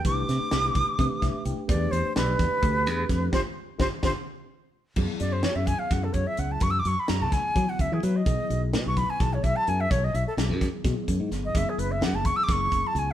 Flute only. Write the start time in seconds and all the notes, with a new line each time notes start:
0.06 D6
1.69 D5
1.91 C5
2.17 B4
3.33 C5
3.80 C5
4.04 C5
5.20 D5
5.33 C5
5.44 C#5
5.56 E5
5.67 G#5
5.79 F5
5.92 F#5
6.04 A4
6.13 C#5
6.27 E5
6.39 F#5
6.52 A5
6.62 C#6
6.71 E6
6.79 D6
6.87 C#6
6.99 B5
7.09 A#5
7.22 A5
7.33 G#5
7.69 F#5
7.81 E5
7.93 G#4
8.03 B4
8.16 D#5
8.88 C#6
8.97 B5
9.10 G#5
9.21 A5
9.34 C#5
9.43 E5
9.56 A5
9.69 G#5
9.81 E5
9.91 C#5
10.04 D#5
10.15 E5
10.27 A4
11.45 D#5
11.57 E5
11.69 G#4
11.79 B4
11.92 E5
12.04 F#5
12.15 A5
12.26 C#6
12.36 E6
12.44 D6
12.52 C#6
12.87 A5
12.99 G#5